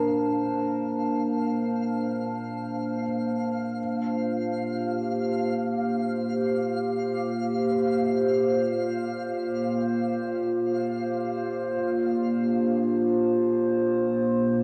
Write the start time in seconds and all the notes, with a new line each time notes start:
Already playing: A#2 A#3 D4 A#4 C5 F5 A5
3.86 F4
4.41 G4
7.71 C5
8.01 E5
11.75 C5
12.07 D4 F5